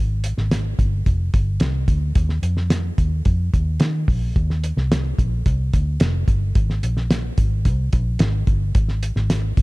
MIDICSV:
0, 0, Header, 1, 3, 480
1, 0, Start_track
1, 0, Key_signature, -3, "major"
1, 0, Tempo, 548948
1, 1888, Time_signature, 4, 2, 24, 8
1, 8413, End_track
2, 0, Start_track
2, 0, Title_t, "Fingered electric bass"
2, 0, Program_c, 0, 33
2, 0, Note_on_c, 0, 32, 103
2, 276, Note_off_c, 0, 32, 0
2, 327, Note_on_c, 0, 32, 64
2, 634, Note_off_c, 0, 32, 0
2, 688, Note_on_c, 0, 31, 84
2, 892, Note_off_c, 0, 31, 0
2, 930, Note_on_c, 0, 29, 81
2, 1133, Note_off_c, 0, 29, 0
2, 1170, Note_on_c, 0, 31, 93
2, 1374, Note_off_c, 0, 31, 0
2, 1402, Note_on_c, 0, 36, 87
2, 1609, Note_off_c, 0, 36, 0
2, 1642, Note_on_c, 0, 38, 82
2, 1849, Note_off_c, 0, 38, 0
2, 1888, Note_on_c, 0, 39, 94
2, 2093, Note_off_c, 0, 39, 0
2, 2120, Note_on_c, 0, 41, 85
2, 2532, Note_off_c, 0, 41, 0
2, 2608, Note_on_c, 0, 39, 77
2, 2812, Note_off_c, 0, 39, 0
2, 2848, Note_on_c, 0, 41, 80
2, 3053, Note_off_c, 0, 41, 0
2, 3092, Note_on_c, 0, 39, 87
2, 3295, Note_off_c, 0, 39, 0
2, 3324, Note_on_c, 0, 51, 99
2, 3531, Note_off_c, 0, 51, 0
2, 3567, Note_on_c, 0, 34, 79
2, 3773, Note_off_c, 0, 34, 0
2, 3813, Note_on_c, 0, 39, 103
2, 4118, Note_off_c, 0, 39, 0
2, 4168, Note_on_c, 0, 36, 78
2, 4476, Note_off_c, 0, 36, 0
2, 4534, Note_on_c, 0, 34, 87
2, 4737, Note_off_c, 0, 34, 0
2, 4774, Note_on_c, 0, 36, 97
2, 4977, Note_off_c, 0, 36, 0
2, 5016, Note_on_c, 0, 38, 87
2, 5218, Note_off_c, 0, 38, 0
2, 5254, Note_on_c, 0, 29, 89
2, 5457, Note_off_c, 0, 29, 0
2, 5489, Note_on_c, 0, 31, 91
2, 5694, Note_off_c, 0, 31, 0
2, 5733, Note_on_c, 0, 32, 96
2, 5937, Note_off_c, 0, 32, 0
2, 5970, Note_on_c, 0, 34, 81
2, 6380, Note_off_c, 0, 34, 0
2, 6452, Note_on_c, 0, 32, 79
2, 6692, Note_on_c, 0, 36, 90
2, 6705, Note_off_c, 0, 32, 0
2, 6897, Note_off_c, 0, 36, 0
2, 6934, Note_on_c, 0, 34, 92
2, 7138, Note_off_c, 0, 34, 0
2, 7162, Note_on_c, 0, 32, 88
2, 7371, Note_off_c, 0, 32, 0
2, 7408, Note_on_c, 0, 31, 89
2, 7615, Note_off_c, 0, 31, 0
2, 7653, Note_on_c, 0, 32, 89
2, 7960, Note_off_c, 0, 32, 0
2, 8007, Note_on_c, 0, 32, 92
2, 8316, Note_off_c, 0, 32, 0
2, 8372, Note_on_c, 0, 31, 81
2, 8413, Note_off_c, 0, 31, 0
2, 8413, End_track
3, 0, Start_track
3, 0, Title_t, "Drums"
3, 208, Note_on_c, 9, 42, 78
3, 295, Note_off_c, 9, 42, 0
3, 329, Note_on_c, 9, 38, 38
3, 417, Note_off_c, 9, 38, 0
3, 450, Note_on_c, 9, 38, 102
3, 450, Note_on_c, 9, 42, 98
3, 538, Note_off_c, 9, 38, 0
3, 538, Note_off_c, 9, 42, 0
3, 689, Note_on_c, 9, 36, 75
3, 691, Note_on_c, 9, 42, 62
3, 776, Note_off_c, 9, 36, 0
3, 778, Note_off_c, 9, 42, 0
3, 929, Note_on_c, 9, 36, 88
3, 929, Note_on_c, 9, 42, 67
3, 1016, Note_off_c, 9, 42, 0
3, 1017, Note_off_c, 9, 36, 0
3, 1169, Note_on_c, 9, 42, 72
3, 1170, Note_on_c, 9, 36, 84
3, 1257, Note_off_c, 9, 42, 0
3, 1258, Note_off_c, 9, 36, 0
3, 1399, Note_on_c, 9, 42, 75
3, 1407, Note_on_c, 9, 38, 109
3, 1486, Note_off_c, 9, 42, 0
3, 1495, Note_off_c, 9, 38, 0
3, 1643, Note_on_c, 9, 36, 86
3, 1643, Note_on_c, 9, 42, 61
3, 1731, Note_off_c, 9, 36, 0
3, 1731, Note_off_c, 9, 42, 0
3, 1883, Note_on_c, 9, 42, 84
3, 1886, Note_on_c, 9, 36, 116
3, 1971, Note_off_c, 9, 42, 0
3, 1973, Note_off_c, 9, 36, 0
3, 2004, Note_on_c, 9, 38, 32
3, 2091, Note_off_c, 9, 38, 0
3, 2124, Note_on_c, 9, 42, 71
3, 2211, Note_off_c, 9, 42, 0
3, 2245, Note_on_c, 9, 38, 38
3, 2332, Note_off_c, 9, 38, 0
3, 2364, Note_on_c, 9, 38, 95
3, 2364, Note_on_c, 9, 42, 106
3, 2452, Note_off_c, 9, 38, 0
3, 2452, Note_off_c, 9, 42, 0
3, 2607, Note_on_c, 9, 36, 76
3, 2607, Note_on_c, 9, 42, 62
3, 2694, Note_off_c, 9, 36, 0
3, 2694, Note_off_c, 9, 42, 0
3, 2844, Note_on_c, 9, 42, 62
3, 2849, Note_on_c, 9, 36, 94
3, 2931, Note_off_c, 9, 42, 0
3, 2937, Note_off_c, 9, 36, 0
3, 3092, Note_on_c, 9, 36, 89
3, 3092, Note_on_c, 9, 42, 64
3, 3179, Note_off_c, 9, 36, 0
3, 3180, Note_off_c, 9, 42, 0
3, 3320, Note_on_c, 9, 42, 73
3, 3328, Note_on_c, 9, 38, 92
3, 3407, Note_off_c, 9, 42, 0
3, 3416, Note_off_c, 9, 38, 0
3, 3568, Note_on_c, 9, 36, 88
3, 3572, Note_on_c, 9, 46, 37
3, 3655, Note_off_c, 9, 36, 0
3, 3660, Note_off_c, 9, 46, 0
3, 3812, Note_on_c, 9, 36, 105
3, 3813, Note_on_c, 9, 42, 78
3, 3899, Note_off_c, 9, 36, 0
3, 3901, Note_off_c, 9, 42, 0
3, 3937, Note_on_c, 9, 38, 31
3, 4024, Note_off_c, 9, 38, 0
3, 4053, Note_on_c, 9, 42, 72
3, 4141, Note_off_c, 9, 42, 0
3, 4174, Note_on_c, 9, 38, 36
3, 4262, Note_off_c, 9, 38, 0
3, 4299, Note_on_c, 9, 38, 106
3, 4299, Note_on_c, 9, 42, 101
3, 4387, Note_off_c, 9, 38, 0
3, 4387, Note_off_c, 9, 42, 0
3, 4534, Note_on_c, 9, 36, 88
3, 4538, Note_on_c, 9, 42, 66
3, 4621, Note_off_c, 9, 36, 0
3, 4625, Note_off_c, 9, 42, 0
3, 4773, Note_on_c, 9, 42, 74
3, 4774, Note_on_c, 9, 36, 86
3, 4860, Note_off_c, 9, 42, 0
3, 4861, Note_off_c, 9, 36, 0
3, 5015, Note_on_c, 9, 42, 74
3, 5016, Note_on_c, 9, 36, 79
3, 5102, Note_off_c, 9, 42, 0
3, 5103, Note_off_c, 9, 36, 0
3, 5246, Note_on_c, 9, 42, 73
3, 5255, Note_on_c, 9, 38, 108
3, 5333, Note_off_c, 9, 42, 0
3, 5342, Note_off_c, 9, 38, 0
3, 5489, Note_on_c, 9, 36, 88
3, 5490, Note_on_c, 9, 42, 60
3, 5576, Note_off_c, 9, 36, 0
3, 5577, Note_off_c, 9, 42, 0
3, 5730, Note_on_c, 9, 42, 81
3, 5732, Note_on_c, 9, 36, 109
3, 5818, Note_off_c, 9, 42, 0
3, 5819, Note_off_c, 9, 36, 0
3, 5856, Note_on_c, 9, 38, 35
3, 5944, Note_off_c, 9, 38, 0
3, 5974, Note_on_c, 9, 42, 77
3, 6061, Note_off_c, 9, 42, 0
3, 6092, Note_on_c, 9, 38, 39
3, 6179, Note_off_c, 9, 38, 0
3, 6213, Note_on_c, 9, 38, 105
3, 6213, Note_on_c, 9, 42, 105
3, 6301, Note_off_c, 9, 38, 0
3, 6301, Note_off_c, 9, 42, 0
3, 6451, Note_on_c, 9, 42, 66
3, 6452, Note_on_c, 9, 36, 85
3, 6538, Note_off_c, 9, 42, 0
3, 6539, Note_off_c, 9, 36, 0
3, 6690, Note_on_c, 9, 42, 70
3, 6693, Note_on_c, 9, 36, 79
3, 6778, Note_off_c, 9, 42, 0
3, 6781, Note_off_c, 9, 36, 0
3, 6931, Note_on_c, 9, 42, 74
3, 6935, Note_on_c, 9, 36, 94
3, 7018, Note_off_c, 9, 42, 0
3, 7022, Note_off_c, 9, 36, 0
3, 7164, Note_on_c, 9, 42, 78
3, 7172, Note_on_c, 9, 38, 103
3, 7251, Note_off_c, 9, 42, 0
3, 7260, Note_off_c, 9, 38, 0
3, 7408, Note_on_c, 9, 42, 53
3, 7409, Note_on_c, 9, 36, 85
3, 7496, Note_off_c, 9, 36, 0
3, 7496, Note_off_c, 9, 42, 0
3, 7649, Note_on_c, 9, 42, 90
3, 7652, Note_on_c, 9, 36, 108
3, 7737, Note_off_c, 9, 42, 0
3, 7739, Note_off_c, 9, 36, 0
3, 7768, Note_on_c, 9, 38, 31
3, 7856, Note_off_c, 9, 38, 0
3, 7893, Note_on_c, 9, 42, 82
3, 7980, Note_off_c, 9, 42, 0
3, 8010, Note_on_c, 9, 38, 37
3, 8097, Note_off_c, 9, 38, 0
3, 8131, Note_on_c, 9, 38, 100
3, 8131, Note_on_c, 9, 42, 105
3, 8219, Note_off_c, 9, 38, 0
3, 8219, Note_off_c, 9, 42, 0
3, 8371, Note_on_c, 9, 36, 82
3, 8371, Note_on_c, 9, 42, 57
3, 8413, Note_off_c, 9, 36, 0
3, 8413, Note_off_c, 9, 42, 0
3, 8413, End_track
0, 0, End_of_file